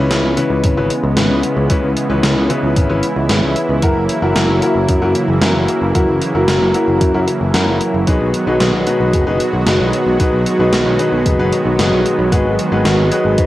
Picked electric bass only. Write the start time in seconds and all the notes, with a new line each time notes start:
0.11 C#2
0.24 C#2
0.50 C#2
0.64 G#1
0.77 G#1
1.04 C#2
1.17 G#1
1.30 C#2
1.57 C#2
1.70 C#2
1.83 C#2
2.10 C#2
2.23 C#2
2.36 C#2
2.63 C#2
2.76 G#1
2.90 G#1
3.16 C#2
3.30 G#1
3.43 C#2
3.69 C#2
3.83 F#1
3.96 F#1
4.22 F#1
4.35 F#1
4.49 F#1
4.75 F#1
4.89 F#2
5.02 F#2
5.28 F#1
5.42 F#2
5.55 F#1
5.82 F#1
5.95 F#1
6.08 F#1
6.35 F#1
6.48 F#1
6.61 F#1
6.88 F#1
7.01 F#2
7.14 F#2
7.41 F#1
7.54 F#2
7.67 F#1
7.94 F#1
8.07 B1
8.21 B1
8.47 B1
8.60 B1
8.74 B1
9.00 B1
9.13 F#1
9.27 F#1
9.53 B1
9.66 F#1
9.80 B1
10.06 B1
10.20 B1
10.33 B1
10.59 B1
10.73 B1
10.86 B1
11.12 B1
11.26 F#1
11.39 F#1
11.65 B1
11.79 F#1
11.92 B1
12.19 B1
12.32 G#1
12.45 G#1
12.72 G#1
12.85 G#1
12.98 G#1
13.25 G#1
13.38 G#2